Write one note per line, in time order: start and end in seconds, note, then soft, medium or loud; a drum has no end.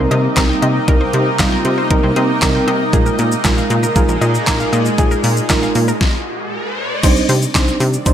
0.00 2.89 C3 medium
0.00 0.19 G3 loud
0.00 2.89 A#3 medium
0.00 0.19 C4 medium
0.00 0.19 D#4 medium
0.00 5.97 D#4 medium
0.00 0.19 A#4 loud
0.00 0.10 C5 medium
0.11 0.28 C3 loud
0.11 0.23 D#5 medium
0.11 closed hi-hat soft
0.37 0.54 C2 loud
0.37 0.70 G3 medium
0.37 0.70 C4 medium
0.37 0.70 D#4 medium
0.37 0.70 A#4 loud
0.37 0.49 A#5 medium
0.37 kick loud
0.37 snare medium
0.37 clap loud
0.37 closed hi-hat medium
0.49 0.61 G5 medium
0.62 0.79 C3 medium
0.62 0.74 D#5 medium
0.62 closed hi-hat medium
0.88 1.05 C2 loud
0.88 1.21 G3 medium
0.88 1.21 C4 medium
0.88 1.21 D#4 medium
0.88 1.00 A#4 loud
0.88 1.22 A#4 loud
0.88 kick loud
0.88 closed hi-hat medium
1.01 1.13 C5 medium
1.13 1.30 C3 loud
1.13 closed hi-hat soft
1.39 1.56 C2 loud
1.39 1.73 G3 loud
1.39 1.73 C4 medium
1.39 1.73 D#4 medium
1.39 1.73 F4 loud
1.39 1.51 A#5 medium
1.39 kick loud
1.39 snare medium
1.39 clap loud
1.39 closed hi-hat medium
1.52 1.64 G5 medium
1.65 1.82 C3 medium
1.65 closed hi-hat medium
1.78 1.90 C5 medium
1.90 1.99 C2 loud
1.90 2.24 G3 loud
1.90 2.24 C4 medium
1.90 2.24 D#4 medium
1.90 2.02 A#4 medium
1.90 2.24 A#4 loud
1.90 kick loud
1.90 closed hi-hat medium
2.03 2.12 C2 loud
2.03 2.15 C5 medium
2.16 2.33 C3 loud
2.16 2.28 D#5 medium
2.16 closed hi-hat soft
2.42 2.59 C2 loud
2.42 2.75 G3 loud
2.42 2.75 C4 medium
2.42 2.75 D#4 medium
2.42 2.75 A#4 loud
2.42 2.54 A#5 medium
2.42 kick loud
2.42 snare medium
2.42 clap loud
2.42 closed hi-hat medium
2.55 2.67 G5 medium
2.67 2.84 C3 loud
2.67 2.80 D#5 medium
2.67 closed hi-hat medium
2.93 3.10 A#1 loud
2.93 5.98 A#2 medium
2.93 3.26 G#3 medium
2.93 5.98 G#3 medium
2.93 3.27 D#4 medium
2.93 3.27 F4 medium
2.93 3.05 G#4 loud
2.93 3.27 A#4 medium
2.93 kick loud
2.93 closed hi-hat medium
2.93 shaker medium
3.06 3.18 A#4 medium
3.06 shaker medium
3.19 3.36 A#2 loud
3.19 closed hi-hat soft
3.19 shaker soft
3.32 shaker medium
3.44 3.61 A#1 loud
3.44 3.78 G#3 loud
3.44 3.78 D#4 medium
3.44 3.78 F4 medium
3.44 3.78 A#4 loud
3.44 3.56 G#5 medium
3.44 kick loud
3.44 snare medium
3.44 clap loud
3.44 closed hi-hat medium
3.44 shaker medium
3.57 3.69 F5 medium
3.57 shaker medium
3.70 3.87 A#2 loud
3.70 closed hi-hat medium
3.70 shaker medium
3.83 3.95 A#4 medium
3.83 shaker medium
3.96 4.04 A#1 loud
3.96 4.29 G#3 loud
3.96 4.29 D#4 medium
3.96 4.29 F4 medium
3.96 4.08 G#4 medium
3.96 4.29 A#4 loud
3.96 kick loud
3.96 closed hi-hat medium
3.96 shaker medium
4.09 4.17 A#1 medium
4.09 4.21 A#4 medium
4.09 shaker medium
4.21 4.38 A#2 loud
4.21 4.33 D#5 medium
4.21 closed hi-hat soft
4.21 shaker soft
4.35 shaker medium
4.47 4.64 A#1 loud
4.47 4.80 G#3 loud
4.47 4.80 D#4 medium
4.47 4.80 F4 medium
4.47 4.81 A#4 loud
4.47 4.59 G#5 medium
4.47 kick loud
4.47 snare medium
4.47 clap loud
4.47 closed hi-hat medium
4.47 shaker medium
4.60 4.72 F5 medium
4.60 shaker soft
4.73 4.89 A#2 loud
4.73 4.85 D#5 medium
4.73 closed hi-hat medium
4.73 shaker medium
4.86 shaker medium
4.98 5.15 A#1 loud
4.98 5.32 G#3 medium
4.98 5.32 D#4 medium
4.98 5.32 F4 medium
4.98 5.10 G#4 loud
4.98 5.32 G#4 medium
4.98 kick loud
4.98 closed hi-hat medium
4.98 riser medium
4.98 shaker medium
5.11 5.23 A#4 medium
5.11 shaker medium
5.24 5.41 A#2 loud
5.24 open hi-hat medium
5.24 shaker medium
5.37 shaker medium
5.49 5.66 A#1 loud
5.49 5.83 G#3 medium
5.49 5.83 D#4 medium
5.49 5.83 F4 medium
5.49 5.83 A#4 loud
5.49 5.62 G#5 medium
5.49 kick loud
5.49 snare medium
5.49 clap loud
5.49 closed hi-hat medium
5.49 shaker medium
5.62 5.74 F5 medium
5.62 shaker medium
5.75 5.92 A#2 loud
5.75 open hi-hat medium
5.75 shaker medium
5.88 6.00 A#4 medium
5.88 shaker medium
6.01 kick loud
6.01 snare loud
7.03 7.20 C2 loud
7.03 8.14 C3 medium
7.03 8.14 D#3 medium
7.03 7.37 G3 medium
7.03 7.37 C4 medium
7.03 7.37 D4 medium
7.03 7.37 D#4 medium
7.03 7.37 C5 loud
7.03 8.14 D5 medium
7.03 kick loud
7.03 closed hi-hat medium
7.03 crash loud
7.03 shaker medium
7.16 shaker medium
7.29 7.46 C3 medium
7.29 open hi-hat medium
7.29 shaker medium
7.42 shaker medium
7.55 7.72 C2 loud
7.55 7.88 G3 medium
7.55 7.88 C4 medium
7.55 7.88 D4 medium
7.55 7.88 D#4 medium
7.55 7.88 C5 loud
7.55 kick loud
7.55 snare medium
7.55 clap loud
7.55 closed hi-hat medium
7.55 shaker medium
7.68 shaker medium
7.80 7.97 C3 loud
7.80 open hi-hat medium
7.80 shaker medium
7.93 shaker soft
7.93 shaker medium
8.06 8.14 C2 loud
8.06 8.14 G3 medium
8.06 8.14 C4 medium
8.06 8.14 D4 medium
8.06 8.14 D#4 medium
8.06 8.14 C5 loud
8.06 kick loud
8.06 closed hi-hat medium
8.06 shaker medium